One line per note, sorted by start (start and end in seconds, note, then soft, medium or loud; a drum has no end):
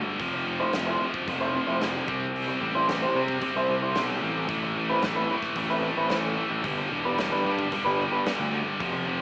0.00 0.17 G2 medium
0.00 0.18 D3 medium
0.00 0.18 G3 medium
0.19 0.62 F1 medium
0.19 0.45 F2 medium
0.19 0.45 C3 medium
0.19 0.46 F3 loud
0.19 kick loud
0.19 open hi-hat soft
0.33 muted clean electric guitar stroke soft
0.46 0.71 F2 medium
0.46 0.72 C3 medium
0.46 0.73 F3 medium
0.60 0.72 A3 medium
0.60 0.72 C4 medium
0.60 0.73 E4 medium
0.60 0.73 C5 medium
0.73 0.95 F1 medium
0.73 1.00 F2 medium
0.73 1.00 C3 medium
0.73 1.01 F3 medium
0.73 muted clean electric guitar stroke soft
0.73 snare loud
0.73 open hi-hat soft
0.86 1.04 A3 medium
0.86 1.04 C4 medium
0.86 1.04 E4 medium
0.86 1.04 C5 medium
1.01 1.27 F2 medium
1.01 1.27 C3 medium
1.01 1.28 F3 medium
1.14 kick medium
1.27 1.59 F1 medium
1.27 1.53 F2 medium
1.27 1.54 C3 medium
1.27 1.54 F3 loud
1.27 muted clean electric guitar stroke soft
1.27 kick medium
1.27 open hi-hat soft
1.41 1.59 A3 medium
1.41 1.58 C4 medium
1.41 1.58 E4 medium
1.41 1.58 C5 medium
1.54 1.80 F2 medium
1.54 1.80 C3 medium
1.54 1.81 F3 medium
1.67 1.99 F1 medium
1.67 1.85 A3 medium
1.67 1.85 C4 medium
1.67 1.85 E4 medium
1.67 1.84 C5 medium
1.81 2.06 F2 medium
1.81 2.06 C3 medium
1.81 2.07 F3 medium
1.81 snare loud
1.81 open hi-hat soft
1.94 muted clean electric guitar stroke soft
2.07 2.50 C2 medium
2.07 2.32 C3 medium
2.07 2.33 G3 medium
2.07 2.34 C4 medium
2.07 kick medium
2.33 2.59 C3 medium
2.33 2.60 G3 medium
2.33 2.61 C4 loud
2.33 open hi-hat soft
2.48 muted clean electric guitar stroke soft
2.60 3.03 A1 medium
2.60 2.86 C3 medium
2.60 2.87 G3 medium
2.60 2.88 C4 medium
2.75 2.88 G3 medium
2.75 2.89 C4 medium
2.75 2.89 E4 medium
2.75 2.88 C5 medium
2.87 3.13 C3 medium
2.87 3.14 G3 medium
2.87 3.15 C4 medium
2.87 muted clean electric guitar stroke soft
2.87 snare loud
2.87 open hi-hat soft
3.02 3.20 G3 medium
3.02 3.20 C4 medium
3.02 3.20 E4 medium
3.02 3.19 C5 medium
3.14 3.40 C3 medium
3.14 3.36 C3 medium
3.14 3.41 G3 medium
3.14 3.42 C4 medium
3.28 kick medium
3.41 3.68 C3 medium
3.41 3.69 G3 medium
3.41 3.69 C4 loud
3.41 muted clean electric guitar stroke soft
3.41 kick medium
3.41 open hi-hat soft
3.55 3.66 C2 medium
3.55 3.74 G3 medium
3.55 3.74 C4 medium
3.55 3.73 E4 medium
3.55 3.73 C5 medium
3.69 3.93 C2 medium
3.69 3.94 C3 medium
3.69 3.94 G3 medium
3.69 3.95 C4 medium
3.82 4.00 G3 medium
3.82 4.00 C4 medium
3.82 4.00 E4 medium
3.82 4.00 C5 medium
3.95 4.20 B1 medium
3.95 4.21 C3 medium
3.95 4.21 G3 medium
3.95 4.22 C4 medium
3.95 snare loud
3.95 open hi-hat soft
4.10 muted clean electric guitar stroke soft
4.22 4.47 A1 medium
4.22 4.48 C3 medium
4.22 4.48 G3 medium
4.22 4.48 C4 medium
4.48 4.91 A1 medium
4.48 4.75 A2 medium
4.48 4.76 E3 medium
4.48 4.77 A3 medium
4.48 kick loud
4.48 open hi-hat soft
4.63 muted clean electric guitar stroke soft
4.76 5.02 A2 medium
4.76 5.02 E3 medium
4.76 5.03 A3 medium
4.89 5.02 A3 medium
4.89 5.02 C4 medium
4.89 5.02 E4 medium
4.89 5.02 B4 medium
5.02 5.24 A1 medium
5.02 5.30 A2 medium
5.02 5.29 E3 medium
5.02 5.31 A3 medium
5.02 muted clean electric guitar stroke soft
5.02 snare loud
5.02 open hi-hat soft
5.15 5.34 A3 medium
5.15 5.34 C4 medium
5.15 5.34 E4 medium
5.15 5.33 B4 medium
5.31 5.55 A2 medium
5.31 5.56 E3 medium
5.31 5.57 A3 medium
5.42 kick medium
5.42 snare soft
5.55 5.88 A1 medium
5.55 5.82 A2 medium
5.55 5.83 E3 medium
5.55 5.83 A3 medium
5.55 muted clean electric guitar stroke soft
5.55 kick medium
5.55 open hi-hat soft
5.70 5.88 A3 medium
5.70 5.88 C4 medium
5.70 5.88 E4 medium
5.70 5.88 B4 medium
5.83 6.09 A2 medium
5.83 6.10 E3 medium
5.83 6.10 A3 medium
5.96 6.39 A1 medium
5.96 6.15 A3 medium
5.96 6.15 C4 medium
5.96 6.15 E4 medium
5.96 6.15 B4 medium
6.10 6.36 A2 medium
6.10 6.36 E3 medium
6.10 6.37 A3 medium
6.10 snare loud
6.10 open hi-hat soft
6.25 muted clean electric guitar stroke soft
6.37 6.63 A2 medium
6.37 6.63 E3 medium
6.37 6.63 A3 medium
6.50 6.61 A1 medium
6.63 6.85 G1 loud
6.63 6.89 G2 medium
6.63 6.90 D3 medium
6.63 6.91 G3 loud
6.63 kick loud
6.63 open hi-hat medium
6.78 muted clean electric guitar stroke soft
6.90 7.33 E1 medium
6.90 7.16 G2 medium
6.90 7.17 D3 medium
6.90 7.18 G3 medium
7.05 7.18 B3 medium
7.05 7.18 D4 medium
7.05 7.18 G4 medium
7.05 7.18 B4 medium
7.18 7.44 G2 medium
7.18 7.44 D3 medium
7.18 7.45 G3 medium
7.18 muted clean electric guitar stroke soft
7.18 snare loud
7.18 open hi-hat soft
7.32 7.50 B3 medium
7.32 7.50 D4 medium
7.32 7.49 G4 medium
7.32 7.49 B4 medium
7.45 7.66 G2 medium
7.45 7.70 G2 medium
7.45 7.72 D3 medium
7.45 7.72 G3 medium
7.59 kick medium
7.71 7.99 G2 medium
7.71 8.00 D3 medium
7.71 8.00 G3 loud
7.71 muted clean electric guitar stroke soft
7.71 kick medium
7.71 open hi-hat soft
7.85 8.07 G1 medium
7.85 8.03 B3 medium
7.85 8.03 D4 medium
7.85 8.03 G4 medium
7.85 8.03 B4 medium
8.00 8.26 G2 medium
8.00 8.26 D3 medium
8.00 8.27 G3 medium
8.12 8.30 B3 medium
8.12 8.30 D4 medium
8.12 8.29 G4 medium
8.12 8.30 B4 medium
8.26 8.52 G2 medium
8.26 8.53 D3 medium
8.26 8.54 G3 medium
8.26 snare loud
8.26 open hi-hat soft
8.38 8.60 D2 medium
8.38 muted clean electric guitar stroke soft
8.53 8.78 G2 medium
8.53 8.79 D3 medium
8.53 8.79 G3 medium
8.80 9.21 F1 medium
8.80 9.06 F2 medium
8.80 9.07 C3 medium
8.80 9.07 F3 medium
8.80 kick loud
8.80 open hi-hat soft
8.93 muted clean electric guitar stroke soft
9.07 9.21 F2 medium
9.07 9.21 C3 medium
9.07 9.21 F3 medium